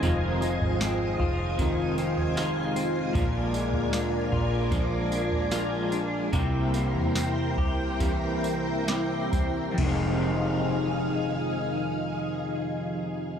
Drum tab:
CC |----------------|----------------|----------------|x---------------|
TB |x-x-x---x-x-x-x-|x-x-x---x-x-x-x-|x-x-x---x-x-x-x-|----------------|
SD |----o-------o---|----o-------o---|----o-------o---|----------------|
FT |o--o--o-o--o----|o--o--o-o--o----|o--o--o-o-----o-|----------------|
BD |------o-o-------|o-------o-------|------o-o-----o-|o---------------|